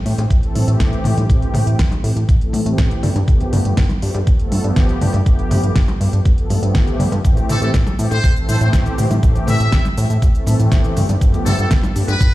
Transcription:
0.05 A2 E3 A3 C4 G4, open hi-hat
0.18 A2, closed hi-hat, high bongo
0.31 A1, kick, closed hi-hat
0.43 E3 A3 C4 A4, closed hi-hat
0.55 A2, open hi-hat, high conga
0.67 A2 E3 A3 C4 G4, closed hi-hat
0.80 A1, kick, snare, closed hi-hat
0.93 closed hi-hat
1.04 A2 E3 A3 C4 G4, open hi-hat, low conga
1.17 A2, closed hi-hat, high conga
1.29 A1 E3 A3 C4 G4, kick, closed hi-hat
1.42 closed hi-hat, high bongo
1.54 A2, open hi-hat, high bongo, low conga
1.66 A2 E3 A3 C4 G4, closed hi-hat
1.79 A1, kick, snare, closed hi-hat
1.91 closed hi-hat, high conga
2.03 A2 E3 A3 C4 G4, open hi-hat
2.16 A2, closed hi-hat
2.29 A1, kick, closed hi-hat
2.41 E3 A3 C4 A4, closed hi-hat
2.53 A2, open hi-hat, high conga
2.65 A2 E3 A3 C4 G4, closed hi-hat
2.78 A1, kick, snare, closed hi-hat
2.91 closed hi-hat
3.03 G2 F3 A3 B3 G4, open hi-hat, low conga
3.15 G2, closed hi-hat, high conga
3.28 G1 F3 A3 B3 G4, kick, closed hi-hat
3.40 closed hi-hat, high bongo
3.53 G2, open hi-hat, high bongo, low conga
3.65 G2 F3 A3 B3 G4, closed hi-hat
3.77 G1, kick, snare, closed hi-hat
3.89 closed hi-hat, high conga
4.02 G2 F3 A3 B3 G4, open hi-hat
4.14 G2, closed hi-hat, high bongo
4.27 G1, kick, closed hi-hat
4.39 F3 A3 B3 A4, closed hi-hat
4.52 G2, open hi-hat, high conga
4.64 G2 F3 A3 B3 G4, closed hi-hat
4.76 G1, kick, snare, closed hi-hat
4.89 closed hi-hat
5.01 G2 F3 A3 B3 G4, open hi-hat, low conga
5.13 G2, closed hi-hat, high conga
5.26 G1 F3 A3 B3 G4, kick, closed hi-hat
5.39 closed hi-hat, high bongo
5.51 G2, open hi-hat, high bongo, low conga
5.63 G2 F3 A3 B3 G4, closed hi-hat
5.76 G1, kick, snare, closed hi-hat
5.88 closed hi-hat, high conga
6.00 G2 F3 A3 B3 G4, open hi-hat
6.13 G2, closed hi-hat
6.25 G1, kick, closed hi-hat
6.37 F3 A3 B3 A4, closed hi-hat
6.50 G2, open hi-hat, high conga
6.62 G2 F3 A3 B3 G4, closed hi-hat
6.75 G1, kick, snare, closed hi-hat
6.88 closed hi-hat
6.99 G2 F3 A3 B3 G4, open hi-hat, low conga
7.12 G2, closed hi-hat, high conga
7.24 A1 E3 A3 C4 G4, kick, closed hi-hat, cabasa
7.37 closed hi-hat, high bongo, cabasa
7.49 A2 A4, open hi-hat, high bongo, low conga, cabasa
7.61 A2 E3 A3 C4 G4 A4, closed hi-hat, cabasa
7.74 A1, kick, snare, closed hi-hat, cabasa
7.87 closed hi-hat, high conga, cabasa
7.98 A2 E3 A3 C4 G4, open hi-hat, cabasa
8.11 A2 C5, closed hi-hat, high bongo, cabasa
8.24 A1, kick, closed hi-hat, cabasa
8.36 E3 A3 C4 A4, closed hi-hat, cabasa
8.48 A2 C5, open hi-hat, high conga, cabasa
8.60 A2 E3 A3 C4 G4 C5, closed hi-hat, cabasa
8.73 A1, kick, snare, closed hi-hat, cabasa
8.86 closed hi-hat, cabasa
8.98 A2 E3 A3 C4 G4, open hi-hat, low conga, cabasa
9.11 A2, closed hi-hat, high conga, cabasa
9.23 A1 E3 A3 C4 G4, kick, closed hi-hat, cabasa
9.35 closed hi-hat, high bongo, cabasa
9.47 A2 E5, open hi-hat, high bongo, low conga, cabasa
9.60 A2 E3 A3 C4 G4, closed hi-hat, cabasa
9.72 A1, kick, snare, closed hi-hat, cabasa
9.85 closed hi-hat, high conga, cabasa
9.97 A2 E3 A3 C4 G4, open hi-hat, cabasa
10.10 A2, closed hi-hat, cabasa
10.22 A1, kick, closed hi-hat, cabasa
10.34 E3 A3 C4 A4, closed hi-hat, cabasa
10.47 A2, open hi-hat, high conga, cabasa
10.59 A2 E3 A3 C4 G4, closed hi-hat, cabasa
10.72 A1, kick, snare, closed hi-hat, cabasa
10.84 closed hi-hat, cabasa
10.96 G2 F3 A3 B3 G4, open hi-hat, low conga, cabasa
11.09 G2, closed hi-hat, high conga, cabasa
11.21 G1 F3 A3 B3 G4, kick, closed hi-hat, cabasa
11.34 closed hi-hat, high bongo, cabasa
11.46 G2 A4, open hi-hat, high bongo, low conga, cabasa
11.58 G2 F3 A3 B3 G4 A4, closed hi-hat, cabasa
11.71 G1, kick, snare, closed hi-hat, cabasa
11.83 closed hi-hat, high conga, cabasa
11.95 G2 F3 A3 B3 G4, open hi-hat, cabasa
12.08 G2 B4, closed hi-hat, high bongo, cabasa
12.21 G1, kick, closed hi-hat, cabasa

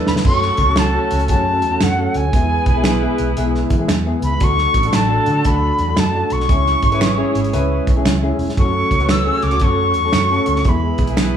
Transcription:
Already playing: D3 E3 A3 B3 D4 E4 A4 B4
0.07 E2 B5, snare
0.16 snare
0.25 F#2 F#3 A3 C#4 F#4 A4 C#6, kick, crash
0.42 snare
0.57 C#2, kick, closed hi-hat
0.68 C#4 F#4 A4
0.76 A5, finger snap, snare, closed hi-hat
0.95 C#4 F#4 A4
1.11 C#2, closed hi-hat
1.20 closed hi-hat
1.28 F#2 C#4 F#4 G#4 A5, kick, closed hi-hat
1.62 E2, closed hi-hat
1.71 C#4 F#4 A4
1.81 F#2 F#5, finger snap, snare, closed hi-hat
1.98 C#4 F#4 A4
2.14 D2 G#5, closed hi-hat
2.33 E2 E3 G#3 B3 E4 G#4 B4, kick, closed hi-hat
2.66 B1, kick, closed hi-hat
2.76 B3 E4 G#4
2.84 finger snap, snare, closed hi-hat
3.02 B3 E4 G#4
3.18 B1, closed hi-hat
3.37 B1 B3 E4 G#4, closed hi-hat
3.55 snare
3.70 E3, kick, closed hi-hat
3.79 B3 E4 G#4
3.88 E2, finger snap, snare, closed hi-hat
4.06 B3 E4 G#4
4.22 C#2 B5, closed hi-hat
4.40 D2 F#3 A3 D4 F#4 A4 C#6, kick, closed hi-hat
4.58 snare
4.74 A1, kick, closed hi-hat
4.83 D4 F#4 A4, closed hi-hat
4.93 A1 A5, finger snap, snare, closed hi-hat
5.11 D4 F#4 A4
5.26 D3, closed hi-hat
5.45 D2 D4 F#4 A4 B5, kick, closed hi-hat
5.79 E2, closed hi-hat
5.88 D4 F#4 A4
5.97 F#2 A5, finger snap, snare, closed hi-hat
6.14 D4 F#4 A4
6.30 B1 C#6, closed hi-hat
6.40 snare
6.48 C#2 E3 G#3 C#4 E4 G#4 C#5, kick, closed hi-hat
6.66 snare
6.82 G#1, kick, closed hi-hat
6.92 C#4 E4 B4, closed hi-hat
7.01 finger snap, snare, closed hi-hat
7.18 C#4 E4 G#4
7.35 G#1, closed hi-hat
7.44 closed hi-hat
7.53 C#2 C#4 E4 B4, closed hi-hat
7.87 B1, kick, closed hi-hat
7.96 C#4 E4 G#4
8.05 C#2, finger snap, snare, closed hi-hat
8.22 C#4 E4 G#4
8.39 E1, open hi-hat
8.49 snare
8.57 F#2 F#3 A3 C#4 F#4 A4 C#5 C#6, kick, closed hi-hat
8.91 C#2, kick, closed hi-hat
9.00 C#4 F#4 B4, closed hi-hat
9.09 E6, finger snap, snare, closed hi-hat
9.25 C#4 F#4 G#4
9.42 C#2 D6, closed hi-hat
9.51 closed hi-hat
9.60 F#2 C#4 F#4 A4, kick, closed hi-hat
9.64 C#6
9.94 E2, closed hi-hat
10.05 C#4 F#4 A4
10.13 F#2, finger snap, snare, closed hi-hat
10.31 C#4 F#4 A4
10.46 D2, closed hi-hat
10.56 snare
10.64 E2 E3 G#3 B3 E4 G#4 B4, kick, closed hi-hat
10.69 B5
10.98 B1, kick, closed hi-hat
11.07 B3 E4 G#4, closed hi-hat
11.17 finger snap, snare, closed hi-hat

